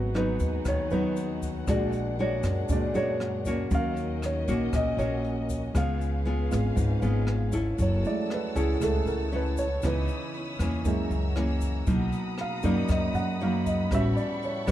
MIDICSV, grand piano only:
0, 0, Header, 1, 2, 480
1, 0, Start_track
1, 0, Tempo, 510204
1, 1572, Time_signature, 4, 2, 24, 8
1, 13843, End_track
2, 0, Start_track
2, 0, Title_t, "Grand piano"
2, 0, Program_c, 0, 0
2, 0, Control_c, 0, 64, 127
2, 0, Note_on_c, 0, 59, 37
2, 0, Note_on_c, 0, 66, 51
2, 162, Note_on_c, 0, 71, 59
2, 595, Note_off_c, 0, 71, 0
2, 641, Note_on_c, 0, 73, 73
2, 860, Note_off_c, 0, 73, 0
2, 860, Note_on_c, 0, 71, 62
2, 1538, Note_off_c, 0, 71, 0
2, 1539, Note_off_c, 0, 59, 0
2, 1542, Note_off_c, 0, 66, 0
2, 1570, Note_on_c, 0, 56, 45
2, 1577, Note_on_c, 0, 62, 35
2, 1584, Control_c, 0, 64, 0
2, 1586, Note_on_c, 0, 66, 48
2, 1603, Note_on_c, 0, 74, 65
2, 1747, Control_c, 0, 64, 127
2, 2077, Note_on_c, 0, 73, 61
2, 2269, Note_off_c, 0, 74, 0
2, 2511, Note_off_c, 0, 73, 0
2, 2518, Note_off_c, 0, 56, 0
2, 2520, Note_off_c, 0, 62, 0
2, 2525, Note_off_c, 0, 66, 0
2, 2532, Note_on_c, 0, 56, 40
2, 2534, Note_on_c, 0, 62, 37
2, 2539, Note_on_c, 0, 66, 46
2, 2563, Note_on_c, 0, 74, 66
2, 2748, Note_off_c, 0, 56, 0
2, 2748, Note_off_c, 0, 62, 0
2, 2751, Note_off_c, 0, 66, 0
2, 2780, Note_off_c, 0, 74, 0
2, 2789, Note_on_c, 0, 73, 73
2, 3462, Note_off_c, 0, 73, 0
2, 3490, Note_on_c, 0, 54, 38
2, 3497, Note_on_c, 0, 61, 39
2, 3503, Control_c, 0, 64, 0
2, 3524, Note_on_c, 0, 77, 78
2, 3676, Control_c, 0, 64, 127
2, 4003, Note_on_c, 0, 73, 60
2, 4174, Note_off_c, 0, 54, 0
2, 4178, Note_off_c, 0, 61, 0
2, 4189, Note_off_c, 0, 77, 0
2, 4434, Note_off_c, 0, 73, 0
2, 4473, Note_on_c, 0, 75, 76
2, 4691, Note_on_c, 0, 73, 64
2, 4694, Note_off_c, 0, 75, 0
2, 5372, Note_off_c, 0, 73, 0
2, 5421, Control_c, 0, 64, 0
2, 5431, Note_on_c, 0, 77, 63
2, 5592, Control_c, 0, 64, 127
2, 6102, Note_off_c, 0, 77, 0
2, 6123, Note_on_c, 0, 56, 41
2, 6125, Note_on_c, 0, 59, 35
2, 6131, Note_on_c, 0, 65, 48
2, 6445, Note_off_c, 0, 56, 0
2, 6446, Note_off_c, 0, 59, 0
2, 6449, Note_off_c, 0, 65, 0
2, 7340, Control_c, 0, 64, 0
2, 7359, Note_on_c, 0, 73, 56
2, 7501, Control_c, 0, 64, 127
2, 7577, Note_off_c, 0, 73, 0
2, 7578, Note_on_c, 0, 56, 40
2, 7578, Note_on_c, 0, 57, 37
2, 7588, Note_on_c, 0, 64, 43
2, 7590, Note_on_c, 0, 74, 75
2, 7812, Note_off_c, 0, 74, 0
2, 7843, Note_on_c, 0, 71, 54
2, 8054, Note_on_c, 0, 68, 61
2, 8059, Note_off_c, 0, 71, 0
2, 8257, Note_off_c, 0, 57, 0
2, 8258, Note_off_c, 0, 56, 0
2, 8263, Note_off_c, 0, 64, 0
2, 8281, Note_on_c, 0, 56, 39
2, 8281, Note_on_c, 0, 57, 34
2, 8284, Note_off_c, 0, 68, 0
2, 8289, Note_on_c, 0, 64, 43
2, 8311, Note_on_c, 0, 69, 64
2, 8500, Note_off_c, 0, 56, 0
2, 8500, Note_off_c, 0, 57, 0
2, 8505, Note_off_c, 0, 64, 0
2, 8533, Note_off_c, 0, 69, 0
2, 8534, Note_on_c, 0, 70, 54
2, 8764, Note_off_c, 0, 70, 0
2, 8804, Note_on_c, 0, 71, 57
2, 9019, Note_off_c, 0, 71, 0
2, 9019, Note_on_c, 0, 73, 68
2, 9244, Note_on_c, 0, 52, 42
2, 9247, Note_off_c, 0, 73, 0
2, 9255, Note_on_c, 0, 59, 36
2, 9258, Note_on_c, 0, 63, 43
2, 9259, Control_c, 0, 64, 0
2, 9283, Note_on_c, 0, 71, 58
2, 9418, Control_c, 0, 64, 127
2, 9930, Note_off_c, 0, 52, 0
2, 9936, Note_off_c, 0, 59, 0
2, 9937, Note_off_c, 0, 63, 0
2, 10188, Note_off_c, 0, 71, 0
2, 10208, Note_on_c, 0, 56, 47
2, 10212, Note_on_c, 0, 58, 39
2, 10217, Note_on_c, 0, 64, 52
2, 10222, Control_c, 0, 64, 0
2, 10409, Control_c, 0, 64, 127
2, 11131, Note_off_c, 0, 56, 0
2, 11132, Note_off_c, 0, 58, 0
2, 11135, Note_off_c, 0, 64, 0
2, 11182, Control_c, 0, 64, 0
2, 11344, Control_c, 0, 64, 127
2, 11675, Note_on_c, 0, 77, 69
2, 11884, Note_on_c, 0, 58, 43
2, 11888, Note_on_c, 0, 61, 37
2, 11893, Note_on_c, 0, 63, 44
2, 11895, Note_off_c, 0, 77, 0
2, 11903, Note_on_c, 0, 74, 59
2, 12129, Note_off_c, 0, 74, 0
2, 12151, Note_on_c, 0, 75, 64
2, 12370, Note_on_c, 0, 78, 67
2, 12373, Note_off_c, 0, 75, 0
2, 12570, Note_off_c, 0, 58, 0
2, 12572, Note_off_c, 0, 61, 0
2, 12575, Note_off_c, 0, 63, 0
2, 12602, Note_off_c, 0, 78, 0
2, 12636, Note_on_c, 0, 77, 54
2, 12853, Note_on_c, 0, 75, 64
2, 12856, Note_off_c, 0, 77, 0
2, 13084, Note_off_c, 0, 75, 0
2, 13092, Note_on_c, 0, 55, 38
2, 13096, Note_on_c, 0, 59, 40
2, 13097, Note_on_c, 0, 61, 38
2, 13099, Control_c, 0, 64, 0
2, 13102, Note_on_c, 0, 66, 45
2, 13121, Note_on_c, 0, 76, 70
2, 13253, Control_c, 0, 64, 127
2, 13326, Note_on_c, 0, 74, 74
2, 13338, Note_off_c, 0, 76, 0
2, 13560, Note_off_c, 0, 74, 0
2, 13592, Note_on_c, 0, 73, 53
2, 13774, Note_off_c, 0, 55, 0
2, 13777, Note_off_c, 0, 59, 0
2, 13777, Note_off_c, 0, 61, 0
2, 13780, Note_off_c, 0, 66, 0
2, 13813, Note_off_c, 0, 73, 0
2, 13813, Note_on_c, 0, 71, 60
2, 13843, Note_off_c, 0, 71, 0
2, 13843, End_track
0, 0, End_of_file